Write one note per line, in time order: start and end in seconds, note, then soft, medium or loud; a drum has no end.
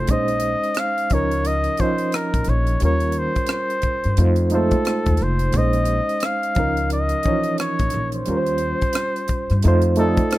0.00 0.11 A3 medium
0.00 0.11 D#4 medium
0.00 0.11 F4 medium
0.00 0.10 F#4 medium
0.00 0.11 A4 medium
0.00 0.10 C5 loud
0.00 0.12 C5 medium
0.07 0.53 A#1 medium
0.07 1.11 G#3 medium
0.07 1.11 C#4 medium
0.07 1.12 D#4 medium
0.07 0.80 D#5 medium
0.07 kick medium
0.07 closed hi-hat medium
0.13 1.13 C5 medium
0.28 closed hi-hat soft
0.40 closed hi-hat medium
0.64 closed hi-hat soft
0.75 cross-stick loud
0.75 closed hi-hat medium
0.79 1.15 F5 medium
0.98 closed hi-hat soft
1.10 1.66 C#2 medium
1.10 1.72 F3 medium
1.10 1.73 C#4 medium
1.10 1.73 D#4 medium
1.10 1.48 C#5 medium
1.10 kick medium
1.10 closed hi-hat medium
1.15 1.74 A#4 medium
1.31 closed hi-hat soft
1.45 1.82 D#5 medium
1.45 closed hi-hat medium
1.64 closed hi-hat soft
1.77 2.71 F3 medium
1.77 2.72 C#4 medium
1.77 2.17 C5 medium
1.77 kick medium
1.77 closed hi-hat medium
1.82 2.72 D#4 medium
1.82 2.73 D#5 medium
1.98 closed hi-hat soft
2.12 2.51 A#4 medium
2.12 cross-stick medium
2.12 closed hi-hat medium
2.34 2.45 A#1 medium
2.34 kick medium
2.34 closed hi-hat soft
2.44 2.75 A#1 medium
2.44 cross-stick soft
2.44 closed hi-hat medium
2.49 2.83 C#5 medium
2.67 closed hi-hat soft
2.80 3.26 D#2 medium
2.80 4.02 G3 medium
2.80 4.03 C#4 medium
2.80 4.04 F4 medium
2.80 closed hi-hat medium
2.85 4.05 A#4 medium
2.85 3.20 C#5 medium
3.00 closed hi-hat soft
3.12 closed hi-hat medium
3.19 3.51 C5 medium
3.36 kick medium
3.36 closed hi-hat soft
3.47 cross-stick loud
3.47 closed hi-hat medium
3.53 4.24 C5 medium
3.70 closed hi-hat soft
3.82 muted upright bass stroke soft
3.82 kick medium
3.82 closed hi-hat medium
4.04 4.16 G2 medium
4.04 closed hi-hat soft
4.17 4.73 F2 loud
4.17 4.48 A3 medium
4.17 4.49 D#4 medium
4.17 4.49 F4 medium
4.17 closed hi-hat medium
4.22 4.50 C5 medium
4.36 closed hi-hat soft
4.50 4.59 G#3 medium
4.50 5.44 D#4 medium
4.50 5.44 F4 medium
4.50 closed hi-hat medium
4.55 5.46 A3 medium
4.55 5.24 A4 medium
4.55 5.45 C5 medium
4.71 kick medium
4.71 closed hi-hat soft
4.85 cross-stick medium
4.85 closed hi-hat medium
5.06 5.18 D#2 medium
5.06 kick medium
5.06 closed hi-hat soft
5.17 5.48 F1 medium
5.17 cross-stick soft
5.17 closed hi-hat medium
5.23 5.59 C5 medium
5.39 closed hi-hat soft
5.52 5.99 A#1 medium
5.52 6.57 G#3 medium
5.52 6.56 C#4 medium
5.52 kick medium
5.52 closed hi-hat medium
5.57 6.57 D#4 medium
5.57 6.59 C5 medium
5.57 6.27 D#5 medium
5.73 closed hi-hat soft
5.85 closed hi-hat medium
6.09 closed hi-hat soft
6.20 cross-stick loud
6.20 closed hi-hat medium
6.25 6.92 F5 medium
6.43 closed hi-hat soft
6.55 7.12 C#2 medium
6.55 7.17 F3 medium
6.55 7.18 C#4 medium
6.55 7.18 D#4 medium
6.55 kick medium
6.55 closed hi-hat medium
6.60 7.19 A#4 medium
6.77 closed hi-hat soft
6.90 7.56 D#5 medium
6.90 closed hi-hat medium
7.09 closed hi-hat soft
7.23 7.32 E3 medium
7.23 8.17 C#4 medium
7.23 kick medium
7.23 closed hi-hat medium
7.27 8.19 F3 medium
7.27 8.17 D#4 medium
7.27 8.18 C#5 medium
7.44 closed hi-hat soft
7.58 8.10 C#5 medium
7.58 cross-stick loud
7.58 closed hi-hat medium
7.79 7.91 A#1 medium
7.79 kick medium
7.79 closed hi-hat soft
7.90 8.21 A#1 medium
7.90 cross-stick soft
7.90 closed hi-hat medium
8.12 9.69 C5 medium
8.12 closed hi-hat soft
8.26 8.72 D#2 medium
8.26 9.49 G3 medium
8.26 9.49 C#4 medium
8.26 closed hi-hat medium
8.30 9.50 F4 medium
8.30 8.37 A#4 medium
8.37 9.53 C5 medium
8.46 closed hi-hat soft
8.58 closed hi-hat medium
8.81 kick medium
8.81 closed hi-hat soft
8.93 cross-stick loud
8.93 closed hi-hat medium
9.16 closed hi-hat soft
9.28 muted upright bass stroke soft
9.28 kick medium
9.28 closed hi-hat medium
9.50 9.61 G2 medium
9.50 cross-stick soft
9.50 closed hi-hat soft
9.62 10.19 F2 medium
9.62 9.94 A3 medium
9.62 9.95 D#4 medium
9.62 9.95 F4 medium
9.62 closed hi-hat medium
9.68 9.96 C5 loud
9.82 closed hi-hat soft
9.96 10.38 A3 medium
9.96 10.38 D#4 medium
9.96 10.38 A4 medium
9.96 closed hi-hat medium
10.00 10.38 F4 medium
10.00 10.07 D5 medium
10.08 10.38 D#5 medium
10.17 kick medium
10.17 closed hi-hat soft
10.31 cross-stick loud
10.31 closed hi-hat medium